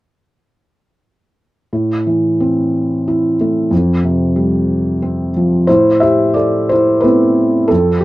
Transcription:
0, 0, Header, 1, 2, 480
1, 0, Start_track
1, 0, Key_signature, 0, "minor"
1, 0, Tempo, 677201
1, 1226, Time_signature, 3, 2, 24, 8
1, 1704, Tempo, 651466
1, 3624, Tempo, 671141
1, 5795, End_track
2, 0, Start_track
2, 0, Title_t, "Felt piano"
2, 0, Program_c, 0, 0
2, 1224, Note_on_c, 0, 45, 44
2, 1344, Control_c, 0, 64, 127
2, 1465, Note_on_c, 0, 52, 34
2, 1704, Note_on_c, 0, 60, 36
2, 2199, Note_on_c, 0, 64, 38
2, 2404, Note_off_c, 0, 52, 0
2, 2443, Note_on_c, 0, 57, 34
2, 2641, Note_off_c, 0, 45, 0
2, 2642, Note_off_c, 0, 60, 0
2, 2660, Note_off_c, 0, 64, 0
2, 2665, Note_on_c, 0, 41, 48
2, 2669, Note_off_c, 0, 57, 0
2, 2682, Control_c, 0, 64, 0
2, 2818, Control_c, 0, 64, 127
2, 2909, Note_on_c, 0, 48, 37
2, 3144, Note_on_c, 0, 55, 36
2, 3633, Note_on_c, 0, 60, 42
2, 3833, Note_off_c, 0, 48, 0
2, 3877, Note_on_c, 0, 53, 40
2, 4068, Note_off_c, 0, 41, 0
2, 4072, Note_off_c, 0, 55, 0
2, 4091, Note_off_c, 0, 60, 0
2, 4098, Note_on_c, 0, 72, 68
2, 4101, Note_off_c, 0, 53, 0
2, 4110, Control_c, 0, 64, 0
2, 4110, Note_on_c, 0, 64, 52
2, 4111, Note_on_c, 0, 45, 40
2, 4247, Control_c, 0, 64, 127
2, 4330, Note_off_c, 0, 64, 0
2, 4334, Note_on_c, 0, 76, 66
2, 4348, Note_off_c, 0, 72, 0
2, 4351, Note_on_c, 0, 67, 54
2, 4574, Note_off_c, 0, 67, 0
2, 4575, Note_on_c, 0, 74, 57
2, 4589, Note_off_c, 0, 76, 0
2, 4589, Note_on_c, 0, 69, 42
2, 4814, Note_off_c, 0, 69, 0
2, 4828, Note_on_c, 0, 72, 69
2, 4831, Note_off_c, 0, 74, 0
2, 4852, Note_on_c, 0, 64, 52
2, 5052, Note_on_c, 0, 71, 58
2, 5065, Note_off_c, 0, 64, 0
2, 5071, Note_on_c, 0, 57, 32
2, 5076, Note_off_c, 0, 72, 0
2, 5077, Note_on_c, 0, 64, 46
2, 5078, Note_on_c, 0, 59, 29
2, 5082, Note_on_c, 0, 60, 38
2, 5522, Note_off_c, 0, 64, 0
2, 5524, Note_off_c, 0, 45, 0
2, 5532, Note_on_c, 0, 69, 65
2, 5534, Note_off_c, 0, 57, 0
2, 5537, Note_off_c, 0, 59, 0
2, 5539, Note_off_c, 0, 60, 0
2, 5551, Note_on_c, 0, 60, 49
2, 5553, Note_off_c, 0, 71, 0
2, 5555, Control_c, 0, 64, 0
2, 5557, Note_on_c, 0, 41, 45
2, 5689, Control_c, 0, 64, 127
2, 5760, Note_off_c, 0, 69, 0
2, 5767, Note_on_c, 0, 67, 65
2, 5770, Note_off_c, 0, 60, 0
2, 5795, Note_off_c, 0, 41, 0
2, 5795, Note_off_c, 0, 67, 0
2, 5795, End_track
0, 0, End_of_file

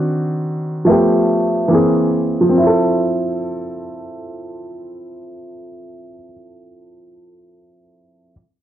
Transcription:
0, 0, Header, 1, 2, 480
1, 0, Start_track
1, 0, Key_signature, -1, "major"
1, 0, Tempo, 821918
1, 1476, Time_signature, 4, 2, 24, 8
1, 5036, End_track
2, 0, Start_track
2, 0, Title_t, "Upright piano"
2, 0, Program_c, 0, 0
2, 0, Control_c, 0, 64, 127
2, 0, Note_on_c, 0, 51, 67
2, 0, Note_on_c, 0, 60, 69
2, 0, Note_on_c, 0, 62, 65
2, 0, Note_on_c, 0, 66, 79
2, 481, Note_off_c, 0, 51, 0
2, 493, Note_off_c, 0, 60, 0
2, 495, Note_on_c, 0, 53, 67
2, 505, Note_on_c, 0, 57, 65
2, 506, Note_off_c, 0, 62, 0
2, 519, Note_off_c, 0, 66, 0
2, 520, Note_on_c, 0, 59, 61
2, 523, Control_c, 0, 64, 0
2, 532, Note_on_c, 0, 67, 73
2, 621, Control_c, 0, 64, 127
2, 982, Note_on_c, 0, 52, 67
2, 986, Note_off_c, 0, 53, 0
2, 991, Note_off_c, 0, 57, 0
2, 993, Note_on_c, 0, 58, 58
2, 998, Note_off_c, 0, 59, 0
2, 1004, Note_off_c, 0, 67, 0
2, 1005, Control_c, 0, 64, 0
2, 1006, Note_on_c, 0, 60, 56
2, 1018, Note_on_c, 0, 68, 72
2, 1098, Control_c, 0, 64, 127
2, 1406, Note_on_c, 0, 53, 68
2, 1448, Note_off_c, 0, 60, 0
2, 1457, Note_on_c, 0, 60, 62
2, 1469, Note_off_c, 0, 52, 0
2, 1475, Note_off_c, 0, 58, 0
2, 1483, Control_c, 0, 64, 0
2, 1488, Note_off_c, 0, 68, 0
2, 1506, Note_on_c, 0, 64, 62
2, 1557, Note_on_c, 0, 69, 80
2, 1583, Control_c, 0, 64, 127
2, 3540, Note_off_c, 0, 53, 0
2, 3591, Note_off_c, 0, 60, 0
2, 3641, Note_off_c, 0, 64, 0
2, 3691, Note_off_c, 0, 69, 0
2, 4864, Control_c, 0, 64, 0
2, 5036, End_track
0, 0, End_of_file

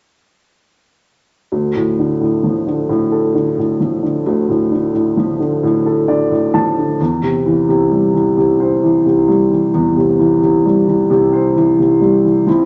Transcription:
0, 0, Header, 1, 2, 480
1, 0, Start_track
1, 0, Tempo, 912548
1, 799, Time_signature, 6, 3, 24, 8
1, 6655, End_track
2, 0, Start_track
2, 0, Title_t, "Upright piano"
2, 0, Program_c, 0, 0
2, 799, Note_on_c, 0, 38, 35
2, 894, Control_c, 0, 64, 127
2, 923, Note_on_c, 0, 45, 29
2, 1044, Note_on_c, 0, 50, 33
2, 1154, Note_off_c, 0, 45, 0
2, 1162, Note_on_c, 0, 45, 30
2, 1281, Note_on_c, 0, 53, 30
2, 1394, Note_off_c, 0, 50, 0
2, 1401, Note_on_c, 0, 50, 30
2, 1513, Note_off_c, 0, 45, 0
2, 1521, Note_on_c, 0, 45, 39
2, 1641, Note_on_c, 0, 69, 31
2, 1752, Note_off_c, 0, 50, 0
2, 1760, Note_on_c, 0, 50, 32
2, 1874, Note_off_c, 0, 45, 0
2, 1882, Note_on_c, 0, 45, 28
2, 1992, Note_off_c, 0, 53, 0
2, 2000, Note_on_c, 0, 53, 29
2, 2108, Note_off_c, 0, 50, 0
2, 2116, Note_on_c, 0, 50, 28
2, 2218, Note_off_c, 0, 38, 0
2, 2241, Note_on_c, 0, 38, 39
2, 2353, Note_off_c, 0, 45, 0
2, 2361, Note_on_c, 0, 45, 31
2, 2473, Note_off_c, 0, 50, 0
2, 2481, Note_on_c, 0, 50, 32
2, 2579, Note_off_c, 0, 69, 0
2, 2592, Note_off_c, 0, 45, 0
2, 2600, Note_on_c, 0, 45, 33
2, 2712, Note_off_c, 0, 53, 0
2, 2720, Note_on_c, 0, 53, 36
2, 2831, Note_off_c, 0, 50, 0
2, 2839, Note_on_c, 0, 50, 32
2, 2955, Note_off_c, 0, 45, 0
2, 2963, Note_on_c, 0, 45, 44
2, 3083, Note_on_c, 0, 69, 29
2, 3190, Note_off_c, 0, 50, 0
2, 3198, Note_on_c, 0, 50, 33
2, 3199, Note_on_c, 0, 74, 44
2, 3310, Note_off_c, 0, 45, 0
2, 3318, Note_on_c, 0, 45, 32
2, 3422, Note_off_c, 0, 74, 0
2, 3432, Note_off_c, 0, 53, 0
2, 3439, Note_on_c, 0, 81, 40
2, 3440, Note_on_c, 0, 53, 33
2, 3555, Note_off_c, 0, 50, 0
2, 3563, Note_on_c, 0, 50, 28
2, 3659, Note_off_c, 0, 38, 0
2, 3662, Note_off_c, 0, 81, 0
2, 3663, Note_off_c, 0, 69, 0
2, 3667, Note_off_c, 0, 45, 0
2, 3672, Note_off_c, 0, 53, 0
2, 3677, Note_off_c, 0, 50, 0
2, 3683, Note_on_c, 0, 40, 42
2, 3686, Control_c, 0, 64, 0
2, 3788, Control_c, 0, 64, 127
2, 3800, Note_on_c, 0, 48, 34
2, 3923, Note_on_c, 0, 52, 38
2, 4032, Note_off_c, 0, 48, 0
2, 4040, Note_on_c, 0, 48, 35
2, 4163, Note_on_c, 0, 55, 33
2, 4273, Note_off_c, 0, 52, 0
2, 4281, Note_on_c, 0, 52, 32
2, 4395, Note_off_c, 0, 48, 0
2, 4403, Note_on_c, 0, 48, 42
2, 4524, Note_on_c, 0, 72, 33
2, 4637, Note_off_c, 0, 52, 0
2, 4644, Note_on_c, 0, 52, 35
2, 4756, Note_off_c, 0, 48, 0
2, 4764, Note_on_c, 0, 48, 32
2, 4874, Note_off_c, 0, 55, 0
2, 4882, Note_on_c, 0, 55, 32
2, 4995, Note_off_c, 0, 52, 0
2, 5003, Note_on_c, 0, 52, 32
2, 5099, Note_off_c, 0, 40, 0
2, 5124, Note_on_c, 0, 40, 40
2, 5234, Note_off_c, 0, 48, 0
2, 5242, Note_on_c, 0, 48, 34
2, 5353, Note_off_c, 0, 52, 0
2, 5361, Note_on_c, 0, 52, 37
2, 5460, Note_off_c, 0, 72, 0
2, 5473, Note_off_c, 0, 48, 0
2, 5481, Note_on_c, 0, 48, 35
2, 5596, Note_off_c, 0, 55, 0
2, 5604, Note_on_c, 0, 55, 36
2, 5714, Note_off_c, 0, 52, 0
2, 5722, Note_on_c, 0, 52, 33
2, 5831, Note_off_c, 0, 48, 0
2, 5839, Note_on_c, 0, 48, 46
2, 5957, Note_on_c, 0, 72, 35
2, 6072, Note_off_c, 0, 52, 0
2, 6080, Note_on_c, 0, 52, 34
2, 6193, Note_off_c, 0, 48, 0
2, 6201, Note_on_c, 0, 48, 34
2, 6309, Note_off_c, 0, 55, 0
2, 6317, Note_on_c, 0, 55, 37
2, 6429, Note_off_c, 0, 52, 0
2, 6437, Note_on_c, 0, 52, 33
2, 6539, Note_off_c, 0, 40, 0
2, 6539, Note_off_c, 0, 72, 0
2, 6548, Note_off_c, 0, 48, 0
2, 6550, Note_off_c, 0, 55, 0
2, 6553, Note_off_c, 0, 52, 0
2, 6558, Note_on_c, 0, 53, 37
2, 6560, Note_on_c, 0, 60, 34
2, 6563, Note_on_c, 0, 64, 41
2, 6564, Control_c, 0, 64, 0
2, 6641, Control_c, 0, 64, 127
2, 6655, Note_off_c, 0, 53, 0
2, 6655, Note_off_c, 0, 60, 0
2, 6655, Note_off_c, 0, 64, 0
2, 6655, End_track
0, 0, End_of_file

